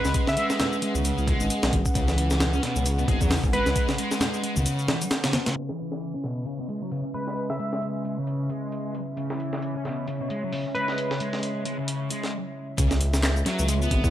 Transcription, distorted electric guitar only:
Already playing: G#3
0.28 C#3
0.38 G#3
0.83 G#3
0.96 C#3
1.28 G#3
1.95 C#3
2.09 E3
2.54 C#4
2.64 B2
2.86 C#3
2.99 B2
3.08 G#3
3.21 F#3
3.31 C#3
3.53 G#3
3.89 C#3
3.99 G#3
4.44 G#3
4.57 C#3
4.89 E3
5.25 C#3
5.47 C#3
5.56 C#3
5.69 E3
6.15 C#4
6.25 B2
6.47 C#3
6.60 B2
6.69 G#3
6.82 F#3
6.92 C#3
7.15 G#3
7.50 C#3
7.60 G#3
8.05 G#3
8.18 C#3
8.50 G#3
9.17 C#3
9.30 E3
9.76 C#4
9.86 B2
10.08 C#3
10.21 B2
10.30 G#3
10.43 F#3
10.53 C#3
10.75 G#3
11.10 C#3
11.20 G#3
11.65 G#3
11.78 C#3
12.10 G#3
12.78 C#3
13.46 F#3
13.69 G#3
13.82 B3

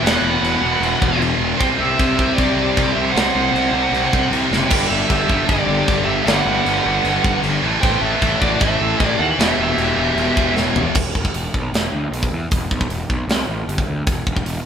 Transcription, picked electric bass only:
0.03 E1
0.22 E1
0.41 E1
0.62 E1
0.81 E1
1.02 E1
1.19 E1
1.38 E1
1.60 C2
1.78 C2
1.99 C2
2.19 C2
2.38 C2
2.57 C2
2.77 C2
2.96 C2
3.15 C2
3.35 C2
3.54 C2
3.73 C2
3.92 C2
4.13 C2
4.31 C2
4.51 F#1
4.71 G1
4.90 G1
5.10 G1
5.29 G1
5.49 G1
5.67 G1
5.88 G1
6.07 G1
6.26 G1
6.45 G1
6.66 G1
6.86 G1
7.04 G1
7.24 G1
7.44 G1
7.62 A1
7.83 A1
8.01 A1
8.22 A1
8.42 A1
8.61 A1
8.80 A1
9.00 A1
9.19 D#2
9.39 E1
9.58 E1
9.78 E1
9.97 E1
10.16 E1
10.37 E1
10.55 E1
10.74 E1
10.95 E1
11.15 E1
11.34 E1
11.54 B1
11.73 E1
11.92 D2
12.11 B1
12.31 E2
12.52 E1
12.71 B1
12.89 E1
13.09 B1
13.28 C2
13.48 A1
13.67 G1
13.87 D2
14.07 E1
14.27 E1
14.44 E1

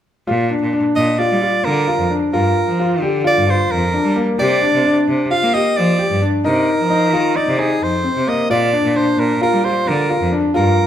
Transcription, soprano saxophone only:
0.96 D#5
1.19 D5
1.65 A#4
2.33 A#4
3.27 D5
3.50 C5
3.71 A#4
4.39 D5
5.31 F5
5.54 D#5
5.77 D5
6.46 A#4
7.36 D5
7.59 G#4
7.83 C5
8.29 D#5
8.50 D5
8.96 C5
9.20 A#4
9.42 A#4
9.65 C5
9.88 A#4
10.56 A#4

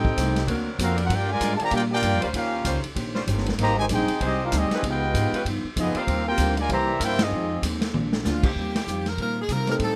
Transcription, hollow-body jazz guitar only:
0.17 A2 G3 C4 D#4
0.49 D3 A#3 C4 F#4
0.79 D3 A#3 C4 F#4
1.10 G3 D4 F4 A#4
1.40 G3 D4 F4 A#4
1.71 G3 D4 F4 A#4
2.03 G3 D4 F4 A#4
2.33 D#3 C#4 G4 C5
2.65 D#3 C#4 G4 C5
2.94 D#3 C#4 G4 C5
3.28 D#3 C#4 G4 C5
3.58 G#2 G3 C4 D#4
3.90 G#2 G3 C4 D#4
4.22 G#2 G3 C4 D#4
4.54 G#2 G3 C4 D#4
4.84 C#3 F3 B3 D#4
5.15 C#3 F3 B3 D#4
5.46 C#3 F3 B3 D#4
5.77 C#3 F3 B3 D#4
6.08 D#3 G3 C4 F4
6.39 D#3 G3 C4 F4
6.69 C3 G3 A#3 E4
7.02 C3 G3 A#3 E4
7.33 F2 D#3 G#3 C4
7.64 F2 D#3 G#3 C4
7.94 A#2 F3 G#3 D4
8.25 A#2 F3 G#3 D4
8.58 D#3 G3 C4 F4
8.89 D#3 G3 C4 F4
9.20 D#3 G3 C4 F4
9.51 D#3 G3 C4 F4
9.80 A2 G3 C4 D#4

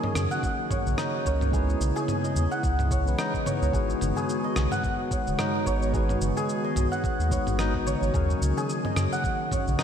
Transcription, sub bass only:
0.16 F#2
0.86 A#1
1.26 C#2
1.80 B1
2.36 E2
2.63 C#2
3.07 B1
3.62 C#2
3.74 G#1
4.01 F#1
4.56 B1
5.27 D#1
5.66 G#1
6.21 F#1
6.76 B1
7.19 D#2
7.47 G#1
8.02 G#1
8.14 D#2
8.41 C#2
8.96 F#2
9.67 A#1

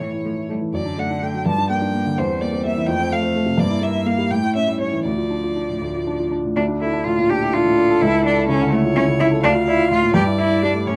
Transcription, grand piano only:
Already playing: E3 A3 E4
0.00 A2
0.13 E4
0.25 A3
0.37 E4
0.49 A3
0.61 E3
0.73 F#2
0.85 D4
0.98 A3
1.10 D4
1.22 A3
1.34 F#3
1.46 G2
1.58 D4
1.70 A#3
1.82 D4
1.94 A#3
2.06 D3
2.18 E2
2.29 C4
2.42 A#3
2.53 C4
2.65 A#3
2.77 E3
2.88 F2
3.00 C4
3.12 A3
3.23 C4
3.36 A3
3.46 C3
3.58 G2
3.70 E4
3.82 A#3
3.94 E4
4.06 A#3
4.18 G3
4.30 A2
4.43 E4
4.55 C#4
4.68 E4
4.80 C#4
4.92 E3
5.05 D2
5.18 F4
5.30 D4
5.44 F4
5.56 D4
5.69 A2
5.82 D2
5.95 F4
6.07 D4
6.19 F4
6.31 D4
6.45 A2
6.56 D2
6.68 D4
6.81 A4
6.93 D4
7.05 A2
7.18 A#2
7.30 D4
7.41 E4
7.54 D4
7.66 A2
7.78 D4
7.90 A4
8.02 C#2
8.14 E4
8.26 A4
8.38 E4
8.49 C#3
8.62 D3
8.73 E4
8.85 F4
8.96 E4
9.08 C#3
9.20 E4
9.31 A4
9.43 D2
9.55 F4
9.68 D5
9.79 F4
9.91 A2
10.03 A#2
10.14 G2
10.26 E4
10.38 E5
10.50 E4
10.63 G3
10.74 A3
10.86 A2

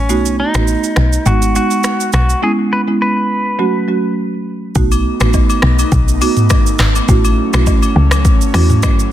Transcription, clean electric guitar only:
Already playing: C#4
0.40 D#4
1.27 F#4
1.56 F#4
2.14 F#4
2.43 G#4
2.73 B4
3.02 B4

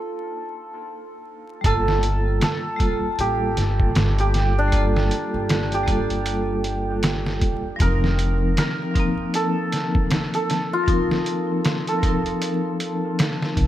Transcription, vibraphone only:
Already playing: A#3 D4 D#4 C5
1.61 G3 A#3
1.67 F4 A4
2.76 G3 A#3
2.82 F4 A4
4.68 G3 A#3
4.74 F4 A4
5.83 G3 A#3
5.89 F4 A4
7.76 F3 C4
7.82 D#4 A#4
8.91 F3 C4
8.97 A#3 D#4
10.83 F3 C4
10.89 D#4 A#4
11.99 F3 C4
12.04 D#4 A#4

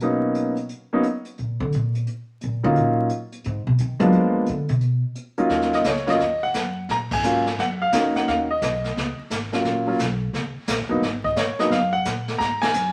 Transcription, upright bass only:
Already playing: B2
1.39 A#2
1.60 D3
1.75 A#2
2.44 A#2
2.64 D3
2.77 A#2
3.46 G#2
3.67 B2
3.80 D#3
4.00 F#3
4.15 F3
4.49 D3
4.69 B2
5.49 D#2
5.84 C#2
6.19 D#2
6.54 F#2
6.89 A#2
7.23 G#2
7.58 F#2
7.92 F2
8.27 D#2
8.62 B1
8.96 C#2
9.18 muted upright bass stroke
9.30 G#1
9.64 A#1
9.99 B1
10.33 C#2
10.56 muted upright bass stroke
10.68 A#1
10.80 F#1
10.90 D#1
11.02 G#1
11.36 G#2
11.59 muted upright bass stroke
11.70 F#2
12.05 A#2
12.40 G#2
12.74 F#2

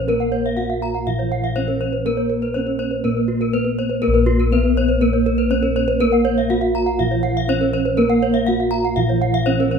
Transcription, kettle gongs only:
Already playing: A#2
0.08 A#4
0.58 B3
1.07 A#2
1.56 B3
2.06 A#4
2.56 B3
3.05 A#2
3.54 B3
4.03 A#4
4.08 A#1
4.52 B3
5.52 B3
6.00 A#4
6.51 B3
7.00 A#2
7.48 B3
7.98 A#4
8.48 B3
8.97 A#2
9.47 B3

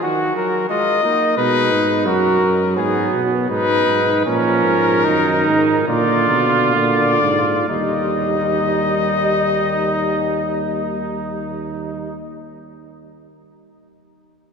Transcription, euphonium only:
0.02 D#3
0.35 F#3
0.70 G#3
1.03 A#3
1.38 G#3
2.06 F#3
4.26 F3
5.05 D#3
5.88 D3
7.69 G3

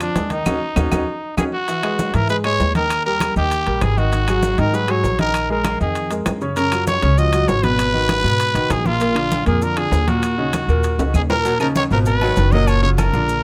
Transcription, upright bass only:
Already playing: F2
0.16 D#2
0.46 D#2
0.76 D#2
0.92 D#2
1.37 D#2
2.14 G#2
2.60 D#2
3.36 D#2
3.67 A#1
3.82 G#1
4.58 G#2
5.04 A#1
5.81 F2
6.27 F#2
7.03 C#2
7.49 G#1
8.24 G#2
8.55 B1
8.70 A#1
9.47 F2
9.92 D#2
10.68 D#2
10.99 C#2
11.14 D#2
11.91 G#1
12.37 F#1
13.13 A#1

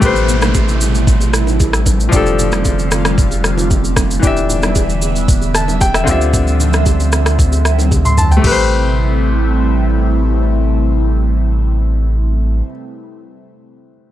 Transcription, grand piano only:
0.00 A3 G4 B4
0.06 C5
2.09 F3 D4
2.14 G4 A4
4.20 E3 D4
4.25 G4 E5
5.55 A5
5.81 G5
5.95 E5
6.04 D3 C4 F4
6.09 G4 E5
8.05 C6
8.18 A5
8.32 G5
8.37 A3
8.42 G4
8.47 B4
8.52 C5

